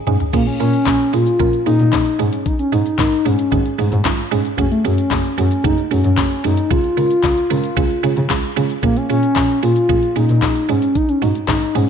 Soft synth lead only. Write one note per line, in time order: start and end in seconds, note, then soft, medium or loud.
0.34 0.46 A#3 loud
0.47 0.59 C#4 medium
0.60 1.15 C#4 loud
1.13 1.66 F4 loud
1.66 2.21 D#4 loud
2.19 2.48 C#4 loud
2.46 2.59 D#4 loud
2.59 2.74 C#4 medium
2.72 2.98 D#4 loud
2.99 3.27 D#4 loud
3.26 4.05 C#4 medium
4.58 4.71 C#4 loud
4.71 4.86 A3 medium
4.85 5.37 C#4 loud
5.38 5.66 C#4 medium
5.64 5.84 D#4 loud
5.84 5.92 D#4 medium
5.91 6.46 C#4 loud
6.44 6.72 D#4 loud
6.71 8.56 F4 loud
8.83 8.98 A#3 loud
8.96 9.09 C#4 loud
9.10 9.59 C#4 loud
9.63 10.17 F4 loud
10.16 10.71 D#4 loud
10.69 10.97 C#4 loud
10.96 11.10 D#4 loud
11.09 11.24 C#4 medium
11.22 11.48 D#4 loud
11.49 11.77 D#4 loud
11.75 11.89 C#4 medium